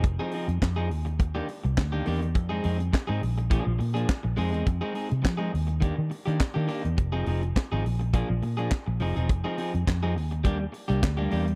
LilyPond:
<<
  \new Staff \with { instrumentName = "Clean electric guitar" } { \time 4/4 \key f \dorian \tempo 4 = 104 r16 <f c' ees' aes'>16 <f c' ees' aes'>16 r8 <f c' ees' aes'>16 r8. <ees bes d' g'>16 r8. <ees bes d' g'>16 <ees bes d' g'>16 r16 | r16 <aes c' ees' aes'>16 <aes c' ees' aes'>16 r8 <aes c' ees' aes'>16 r8 <f bes d' aes'>16 r8 <f bes d' aes'>16 r8 <aes c' ees' aes'>16 <aes c' ees' aes'>16 | r16 <aes c' ees' aes'>16 <aes c' ees' aes'>16 r8 <aes c' ees' aes'>16 r8 <ees bes d' g'>16 r8 <ees bes d' g'>16 r16 <ees bes d' g'>16 <ees bes d' g'>16 r16 | r16 <f c' ees' aes'>16 <f c' ees' aes'>16 r8 <f c' ees' aes'>16 r8 <f bes d' aes'>16 r8 <f bes d' aes'>16 r8 <f c' ees' aes'>16 <f c' ees' aes'>16 |
r16 <f c' ees' aes'>16 <f c' ees' aes'>16 r8 <f c' ees' aes'>16 r8 <g bes d' g'>16 r8 <g bes d' g'>16 r16 <g bes d' g'>16 <g bes d' g'>16 r16 | }
  \new Staff \with { instrumentName = "Fingered electric bass" } { \clef bass \time 4/4 \key f \dorian f,,16 r8 f,16 f,8 ees,4 r16 c,16 d,8 e,8 | f,8 f,8 r16 aes,16 bes,,8. bes,,16 bes,8 r16 bes,,16 f,16 e,16 | f,16 r8 c16 f8 ees,8. ees16 r16 ees16 r16 ees16 r16 e,16 | f,,8 f,,8 r16 aes,,16 bes,,8. bes,,16 bes,8 r16 bes,,16 f,,16 e,,16 |
f,,16 r8 f,16 f,8 ees,4 r16 c,16 d,8 e,8 | }
  \new DrumStaff \with { instrumentName = "Drums" } \drummode { \time 4/4 <hh bd>8 hho16 hh16 <hc hh bd sn>8 hho16 hh16 <hh bd>8 hho16 hh16 <hc hh bd sn>8 hho16 hh16 | <hh bd>8 hho16 hh16 <hc hh bd sn>8 hho16 hh16 <hh bd>8 hho16 hh16 <hc hh bd sn>8 hho16 hh16 | <hh bd>8 hho16 hh16 <hc hh bd sn>8 hho16 hh16 <hh bd>8 hho16 hh16 <hc hh bd sn>8 hho16 hh16 | <hh bd>8 hho16 hh16 <hc hh bd sn>8 hho16 hh16 <hh bd>8 hho16 hh16 <hc hh bd sn>8 hho16 hh16 |
<hh bd>8 hho16 hh16 <hc hh bd sn>8 hho16 hh16 <hh bd>8 hho16 hh16 <hc hh bd sn>8 hho16 hh16 | }
>>